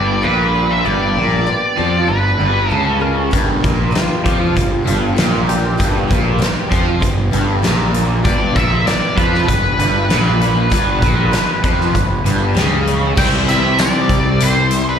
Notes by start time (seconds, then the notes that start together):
Already playing: G1 G2 G3 B3 D4 G4 D5
0.22 A#1 G2 A#2 D3 G3 D4 G4 B4
0.55 G3 B3 D4 G4
0.71 E5
0.84 G1 G2 D3 G3 B3 D4 G4 D5
1.15 A#1 A#2 G3 B3 D4 G4
1.46 G2 D3 G3 B3 D4 G4, muted overdriven electric guitar stroke, muted fingered electric bass stroke
1.77 F2 F3 G3 B3 D4 G4
2.07 G1 G2 G3 B3 D4 G4 B4
2.40 G1 G2 G3 B3 D4 G4
2.69 C#2 G2 C#3 G3 B3 G4 A4
3.00 G3 B3 D4 G4 A#4
3.31 G1 G2 D3 G3 B3 D4 G4, kick, closed hi-hat
3.60 A#1 A#2 G3 B3 D4 G4
3.64 kick, closed hi-hat
3.91 G2 D3 G3 B3 D4 G4, muted overdriven electric guitar stroke
3.95 F4, muted fingered electric bass stroke, snare, closed hi-hat
4.24 F2 F3 G3 D4 G4, kick, closed hi-hat
4.40 F4
4.54 G1 G2 G3 B3 D4 G4, kick, closed hi-hat
4.84 G1 G2 G3 B3 D4 G4, closed hi-hat
5.16 A#1 G2 A#2 D3 G3 D4 G4, snare, closed hi-hat
5.46 G3 B3 D4 G4, closed hi-hat
5.77 G1 G2 D3 G3 B3 D4 G4, kick, closed hi-hat
6.08 A#1 A#2 G3 B3 D4 G4, kick, closed hi-hat
6.38 G2 D3 G3 B3 D4 G4, muted overdriven electric guitar stroke, muted fingered electric bass stroke, closed hi-hat
6.42 snare
6.70 F2 F3 G3 B3 D4 G4, kick, closed hi-hat
7.00 G1 G2 G3 B3 D4 G4, kick, closed hi-hat
7.31 G1 G2 G3 B3 D4 G4, closed hi-hat
7.62 A#1 G2 A#2 D3 G3 D4 G4, snare, closed hi-hat
7.93 G3 B3 D4 G4, closed hi-hat
8.24 G1 G2 D3 G3 B3 D4 G4 D5, kick, closed hi-hat
8.55 A#1 A#2 G3 B3 D4 G4 E5, kick, closed hi-hat
8.86 G2 D3 G3 B3 D4 G4 D5, muted fingered electric bass stroke, muted overdriven electric guitar stroke, snare, closed hi-hat
9.17 F2 F3 G3 B3 D4 G4 B4, kick, closed hi-hat
9.35 snare
9.47 G1 G2 G3 B3 D4 G4 B4, kick, closed hi-hat
9.78 G1 G2 G3 B3 D4 G4, closed hi-hat
10.09 A#1 G2 A#2 D3 G3 D4 G4, snare, closed hi-hat
10.39 G3 B3 D4 G4, closed hi-hat
10.70 G1 G2 D3 G3 B3 D4 G4, kick, closed hi-hat
11.01 A#1 A#2 G3 B3 D4 G4, kick, closed hi-hat
11.31 G2 D3 G3 B3 D4 G4, muted fingered electric bass stroke, muted overdriven electric guitar stroke, snare, closed hi-hat
11.63 F2 F3 G3 B3 D4 G4, kick, closed hi-hat
11.81 snare
11.94 G1 G2 G3 B3 D4 G4, kick, closed hi-hat
12.25 G1 G2 G3 B3 D4 G4, closed hi-hat
12.54 C#2 G2 C#3 G3 B3 G4, snare, closed hi-hat
12.86 G3 B3 D4 G4, closed hi-hat
13.16 C2 C3 E3 G3 E4 G4 G5, kick, crash
13.20 C4
13.46 G3 E4 G4 E5, snare, closed hi-hat
13.77 E3 G3 E4 D5, snare, closed hi-hat, tambourine
14.09 C2 G3 E4 G4, kick, closed hi-hat
14.39 C3 E3 G3 E4 G4 C5, closed hi-hat
14.71 G3 E4 G4, closed hi-hat
14.89 B4